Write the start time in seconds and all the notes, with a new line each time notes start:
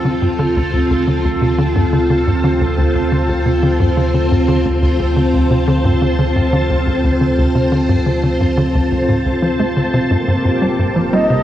Already playing: D2 C4 F4 A4
0.05 D3
0.22 G2
0.35 A5
0.39 D3 C5
0.56 D2
0.73 D2
0.90 D2
1.07 D3
1.24 D2
1.41 C3
1.58 D3
1.75 G2
1.92 D3
2.10 D3
2.27 G2
2.44 D3
2.60 D2
2.78 D2
2.95 D2
3.12 D3
3.29 D2
3.46 C3
3.63 D3
3.80 G2
3.97 D3
4.14 D3
4.31 G2
4.48 D3
4.65 D2
4.82 D2
4.99 D2
5.16 D3
5.33 D2
5.50 C3
5.68 D3
5.84 G2
6.02 D3
6.19 D3
6.36 G2
6.53 D3
6.70 D2
6.87 D2
7.04 D2
7.21 D3
7.38 D2
7.55 C3
7.72 D3
7.89 G2
8.06 D3
8.23 D3
8.40 G2
8.57 D3
8.74 D2
8.91 D2
9.08 A2
9.25 D2
9.42 F3
9.59 A3
9.77 D3
9.93 C3
10.10 G1 G2 A#3 D6
10.28 G2 G4
10.45 G2
10.62 G3
10.79 G2
10.96 F3
11.13 G3 D#5
11.30 C3